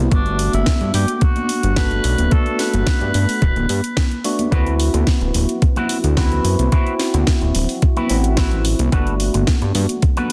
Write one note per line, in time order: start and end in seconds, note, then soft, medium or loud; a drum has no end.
0.10 0.49 G1 loud
0.10 1.73 A3 medium
0.10 1.73 B3 medium
0.10 0.51 D4 medium
0.10 1.74 D4 medium
0.10 1.74 F#4 medium
0.10 kick loud
0.10 closed hi-hat soft
0.26 closed hi-hat soft
0.39 open hi-hat loud
0.53 0.64 G1 medium
0.53 0.92 E4 medium
0.53 closed hi-hat soft
0.53 high conga medium
0.66 kick loud
0.66 snare loud
0.66 closed hi-hat soft
0.81 0.92 G2 medium
0.81 closed hi-hat soft
0.94 1.06 G2 loud
0.94 1.15 G4 medium
0.94 open hi-hat loud
0.94 high conga medium
1.08 closed hi-hat soft
1.15 1.24 G4 medium
1.21 1.76 F#4 loud
1.21 kick loud
1.21 closed hi-hat soft
1.36 closed hi-hat soft
1.36 high conga medium
1.49 open hi-hat loud
1.63 2.00 G1 medium
1.63 closed hi-hat soft
1.76 2.28 A3 medium
1.76 2.29 B3 medium
1.76 2.29 D4 medium
1.76 2.29 F#4 medium
1.76 2.34 B4 loud
1.76 kick medium
1.76 snare loud
1.76 closed hi-hat soft
1.76 high conga medium
1.91 closed hi-hat soft
2.04 2.16 B1 medium
2.04 open hi-hat loud
2.18 2.29 D1 medium
2.18 closed hi-hat soft
2.18 high conga medium
2.31 3.66 A3 medium
2.31 3.66 B3 medium
2.31 3.66 D4 medium
2.31 3.67 F#4 medium
2.31 2.59 A4 loud
2.31 kick loud
2.31 closed hi-hat soft
2.46 closed hi-hat soft
2.59 4.21 B4 loud
2.59 snare medium
2.59 open hi-hat loud
2.73 2.84 G1 medium
2.73 closed hi-hat soft
2.73 high conga medium
2.87 kick loud
2.87 snare loud
2.87 closed hi-hat soft
3.01 3.12 G2 medium
3.01 closed hi-hat soft
3.14 3.26 G2 loud
3.14 open hi-hat loud
3.29 open hi-hat medium
3.42 3.54 D1 medium
3.42 kick loud
3.42 closed hi-hat soft
3.56 3.67 D1 loud
3.56 closed hi-hat soft
3.56 high conga medium
3.69 3.81 G2 medium
3.69 open hi-hat loud
3.84 closed hi-hat soft
3.96 kick loud
3.96 snare loud
3.96 closed hi-hat soft
3.96 high conga medium
4.11 closed hi-hat soft
4.24 4.49 A3 medium
4.24 4.49 B3 medium
4.24 4.49 D4 medium
4.24 4.49 F#4 medium
4.24 open hi-hat loud
4.39 closed hi-hat soft
4.39 high conga medium
4.51 4.90 D2 loud
4.51 4.73 C4 loud
4.51 6.14 C4 medium
4.51 4.73 E4 medium
4.51 6.14 E4 medium
4.51 4.73 F#4 medium
4.51 6.15 F#4 medium
4.51 6.14 B4 medium
4.51 4.73 B4 loud
4.51 kick loud
4.51 closed hi-hat soft
4.67 closed hi-hat soft
4.80 open hi-hat medium
4.94 5.04 D2 medium
4.94 muted clean electric guitar stroke medium
4.94 closed hi-hat soft
4.94 high conga medium
5.07 muted clean electric guitar stroke soft
5.07 kick loud
5.07 snare loud
5.07 closed hi-hat soft
5.21 5.32 D1 medium
5.21 muted clean electric guitar stroke medium
5.21 closed hi-hat soft
5.34 5.46 D1 loud
5.34 muted clean electric guitar stroke soft
5.34 open hi-hat loud
5.34 high conga medium
5.34 low conga medium
5.49 closed hi-hat soft
5.62 kick loud
5.62 closed hi-hat soft
5.76 5.97 C4 medium
5.76 5.97 E4 loud
5.76 5.97 F#4 medium
5.76 5.97 B4 loud
5.76 closed hi-hat soft
5.76 high conga medium
5.76 low conga medium
5.89 open hi-hat loud
6.04 6.40 D2 medium
6.04 closed hi-hat soft
6.17 6.45 C4 medium
6.17 6.69 C4 medium
6.17 6.69 E4 medium
6.17 6.45 E4 medium
6.17 6.45 F#4 medium
6.17 6.69 F#4 medium
6.17 6.69 B4 medium
6.17 6.45 B4 medium
6.17 kick medium
6.17 snare loud
6.17 closed hi-hat soft
6.17 high conga medium
6.32 closed hi-hat soft
6.32 low conga medium
6.44 6.56 F#2 medium
6.44 open hi-hat loud
6.59 6.70 C2 medium
6.59 closed hi-hat soft
6.59 high conga medium
6.72 6.93 C4 loud
6.72 8.07 C4 medium
6.72 8.07 E4 medium
6.72 6.93 E4 medium
6.72 6.93 F#4 loud
6.72 8.07 F#4 medium
6.72 6.93 B4 loud
6.72 kick loud
6.72 closed hi-hat soft
6.87 closed hi-hat soft
6.99 snare medium
6.99 open hi-hat medium
7.14 7.25 D2 medium
7.14 muted clean electric guitar stroke medium
7.14 closed hi-hat soft
7.14 high conga medium
7.27 muted clean electric guitar stroke soft
7.27 kick medium
7.27 snare loud
7.27 closed hi-hat soft
7.41 7.52 D1 medium
7.41 muted clean electric guitar stroke medium
7.41 closed hi-hat soft
7.55 7.66 D1 loud
7.55 muted clean electric guitar stroke soft
7.55 open hi-hat loud
7.55 low conga medium
7.69 open hi-hat medium
7.82 kick loud
7.82 closed hi-hat soft
7.96 8.17 C4 medium
7.96 8.17 E4 medium
7.96 8.17 F#4 medium
7.96 8.17 B4 loud
7.96 closed hi-hat soft
7.96 high conga medium
7.96 low conga medium
8.09 8.75 A1 medium
8.09 8.89 C4 medium
8.09 8.90 E4 medium
8.09 8.90 F#4 medium
8.09 open hi-hat medium
8.24 closed hi-hat soft
8.37 8.65 C4 medium
8.37 8.65 E4 medium
8.37 8.65 F#4 medium
8.37 8.65 B4 medium
8.37 kick medium
8.37 snare loud
8.37 closed hi-hat soft
8.37 high conga medium
8.51 closed hi-hat soft
8.51 low conga medium
8.65 open hi-hat loud
8.79 8.90 C2 loud
8.79 closed hi-hat soft
8.79 high conga medium
8.92 9.30 G1 medium
8.92 10.32 A3 medium
8.92 10.32 B3 medium
8.92 10.32 D4 medium
8.92 9.13 F#4 loud
8.92 10.32 F#4 medium
8.92 9.13 A4 medium
8.92 9.13 B4 medium
8.92 kick loud
8.92 closed hi-hat medium
9.07 closed hi-hat soft
9.20 open hi-hat medium
9.34 9.45 G1 medium
9.34 muted clean electric guitar stroke medium
9.34 closed hi-hat medium
9.34 high conga medium
9.47 muted clean electric guitar stroke soft
9.47 kick medium
9.47 snare loud
9.47 closed hi-hat medium
9.61 9.72 G2 medium
9.61 muted clean electric guitar stroke medium
9.61 closed hi-hat soft
9.75 9.87 G2 loud
9.75 muted clean electric guitar stroke soft
9.75 open hi-hat loud
9.75 high conga medium
9.75 low conga medium
9.89 closed hi-hat medium
10.02 kick loud
10.02 closed hi-hat medium
10.17 10.32 F#4 medium
10.17 10.32 A4 medium
10.17 10.32 B4 loud
10.17 closed hi-hat soft
10.17 high conga medium
10.17 low conga medium